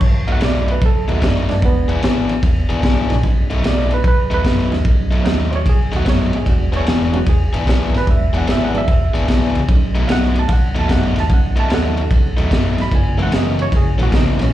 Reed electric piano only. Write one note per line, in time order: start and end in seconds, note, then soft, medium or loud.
0.32 0.43 F#5 loud
0.45 0.69 D5 medium
0.72 0.83 B4 medium
0.86 1.10 A4 medium
1.12 1.23 F#4 medium
1.26 1.48 D4 medium
1.49 2.00 F#3 medium
1.49 2.00 G#3 medium
1.49 1.64 B3 medium
1.49 2.01 D4 medium
1.61 1.64 A#3 medium
1.65 2.81 B3 medium
3.10 3.61 F#3 medium
3.10 3.61 A3 medium
3.10 3.62 C#4 medium
3.10 3.62 D#4 medium
3.68 3.92 D5 medium
3.94 4.06 B4 loud
4.08 4.32 B4 loud
4.34 4.72 B4 medium
4.71 5.23 F#3 medium
4.71 5.23 A3 medium
4.71 5.23 C#4 medium
4.71 5.23 D#4 medium
5.24 5.49 F#3 medium
5.24 5.49 A3 medium
5.24 5.49 C#4 medium
5.24 5.49 D#4 medium
5.51 5.53 C5 medium
5.55 5.67 C#5 loud
5.69 5.94 G#4 medium
5.96 6.08 F#4 loud
6.05 6.08 C5 medium
6.09 6.34 C#5 medium
6.36 6.48 G#4 medium
6.45 7.08 F#3 medium
6.45 7.08 G#3 soft
6.45 7.08 B3 soft
6.45 7.08 D4 medium
6.49 6.74 F#4 medium
6.72 6.73 C5 medium
6.76 6.88 C#5 loud
6.90 7.15 G#4 medium
7.12 7.25 F#3 medium
7.12 7.25 G#3 medium
7.12 7.26 B3 medium
7.12 7.26 C#4 medium
7.12 7.28 F#4 medium
7.29 7.67 G#4 medium
7.93 7.97 A#4 medium
7.98 8.09 B4 loud
8.07 8.69 F#3 medium
8.07 8.69 G#3 medium
8.07 8.70 B3 medium
8.07 8.70 D4 medium
8.07 8.35 E5 medium
8.38 8.49 F#5 medium
8.51 8.63 E5 medium
8.64 8.76 F#5 medium
8.74 8.86 F#3 medium
8.74 8.87 G#3 medium
8.74 8.87 B3 medium
8.74 8.87 D4 medium
8.78 9.54 E5 loud
9.69 10.82 F#3 medium
9.69 10.82 A3 medium
9.69 10.82 C#4 medium
9.69 10.82 D#4 medium
10.07 10.10 F5 medium
10.12 10.37 F#5 loud
10.39 10.51 A5 loud
10.48 10.51 F5 medium
10.53 10.77 F#5 loud
10.79 10.91 A5 medium
10.88 10.91 F5 medium
10.93 11.17 F#5 loud
11.20 11.31 A5 medium
11.29 12.43 F#3 medium
11.29 12.43 A3 medium
11.29 12.43 C#4 medium
11.29 12.43 D#4 medium
11.29 11.32 F5 medium
11.34 11.58 F#5 medium
11.60 11.72 A5 loud
11.74 12.49 A4 medium
11.74 12.51 F#5 loud
12.82 12.93 B5 loud
12.91 13.15 A3 medium
12.91 13.15 B3 medium
12.91 13.16 D4 medium
12.91 13.16 F4 medium
12.95 13.19 G#5 medium
13.18 14.04 G#3 medium
13.18 14.04 A#3 medium
13.18 14.04 C#4 medium
13.18 14.04 E4 medium
13.22 13.33 F#5 loud
13.36 13.60 D#5 medium
13.62 13.73 C#5 loud
13.77 14.00 G#4 loud
14.03 14.14 F#4 loud
14.15 14.40 D#4 loud
14.43 14.53 C#4 medium